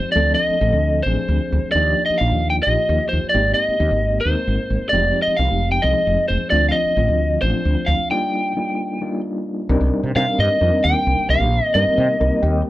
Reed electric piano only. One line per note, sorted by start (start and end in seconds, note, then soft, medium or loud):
0.00 0.14 F3 medium
0.00 0.16 G#3 medium
0.00 0.15 C4 soft
0.00 0.16 D#4 medium
0.00 0.16 G4 medium
0.16 0.56 F3 medium
0.16 0.56 A3 medium
0.16 0.56 C4 medium
0.16 0.56 D4 medium
0.16 0.56 A4 medium
0.61 1.02 D3 medium
0.61 1.01 F3 medium
0.61 1.01 A3 medium
0.61 1.02 C4 medium
0.61 1.02 A4 medium
1.07 1.75 F3 medium
1.07 1.75 A3 medium
1.07 1.75 C4 medium
1.07 1.74 D4 soft
1.07 1.75 G#4 medium
1.75 2.16 F3 medium
1.75 2.15 A#3 medium
1.75 2.15 D4 medium
1.75 2.15 D#4 medium
1.75 2.15 G4 medium
2.20 2.61 F3 medium
2.20 2.60 A#3 medium
2.20 2.61 D4 medium
2.20 2.61 D#4 medium
2.20 2.61 F4 medium
2.66 3.34 F3 medium
2.66 3.33 A#3 soft
2.66 3.33 D#4 soft
2.66 3.34 F4 medium
2.66 3.33 G4 medium
3.34 3.74 G#3 medium
3.34 3.74 A#3 medium
3.34 3.74 C4 medium
3.34 3.74 D#4 medium
3.34 3.74 G4 medium
3.80 4.20 G#3 medium
3.80 4.20 A#3 medium
3.80 4.20 C4 medium
3.80 4.20 D#4 soft
3.80 4.20 G4 medium
4.26 4.92 G#3 medium
4.26 4.94 A#3 medium
4.26 4.92 C4 soft
4.26 4.92 D#4 medium
4.26 4.94 A#4 medium
4.93 5.33 F3 medium
4.93 5.33 G#3 medium
4.93 5.33 C4 medium
4.93 5.33 D#4 medium
4.93 5.33 G4 medium
5.39 5.79 F3 medium
5.39 5.79 G#3 medium
5.39 5.79 C4 medium
5.39 5.79 D#4 medium
5.39 5.79 G4 medium
5.83 6.50 F3 medium
5.83 6.51 G#3 medium
5.83 6.50 C4 medium
5.83 6.51 D#4 medium
5.83 6.52 G#4 medium
6.51 6.92 F3 medium
6.51 6.92 A3 medium
6.51 6.92 C4 medium
6.51 6.92 D4 medium
6.51 6.92 F4 medium
6.97 7.38 D3 medium
6.97 7.38 F3 medium
6.97 7.38 A3 medium
6.97 7.38 C4 medium
6.97 7.38 F4 medium
7.43 8.11 F3 medium
7.43 8.11 A3 medium
7.43 8.11 C4 medium
7.43 8.10 D4 medium
7.43 8.10 F4 medium
8.11 8.51 G3 medium
8.11 8.51 A#3 medium
8.11 8.51 D4 medium
8.11 8.51 D#4 medium
8.11 8.51 F4 medium
8.57 8.97 G3 medium
8.57 8.97 A#3 medium
8.57 8.97 D4 medium
8.57 8.97 D#4 medium
8.57 8.97 F4 medium
9.01 9.69 G3 medium
9.01 9.70 A#3 medium
9.01 9.68 D4 medium
9.01 9.69 D#4 medium
9.01 9.70 F4 medium
9.69 10.10 G3 medium
9.69 10.10 C4 medium
9.69 10.10 D4 medium
9.69 10.10 D#4 medium
9.69 10.10 A#4 medium
10.16 10.56 G3 medium
10.16 10.56 C4 medium
10.16 10.56 D4 medium
10.16 10.56 D#4 medium
10.16 10.56 A#4 medium
10.61 11.42 G3 medium
10.61 11.42 C4 medium
10.61 11.42 D4 medium
10.61 11.42 D#4 medium
10.61 11.42 A#4 medium
11.74 12.15 G3 medium
11.74 12.15 A#3 medium
11.74 12.15 C4 medium
11.74 12.15 D#4 medium
11.74 12.15 A#4 medium
12.20 12.70 G3 medium
12.20 12.70 A#3 medium
12.20 12.70 C4 medium
12.20 12.70 D#4 medium
12.20 12.70 A#4 medium
12.42 12.70 G5 medium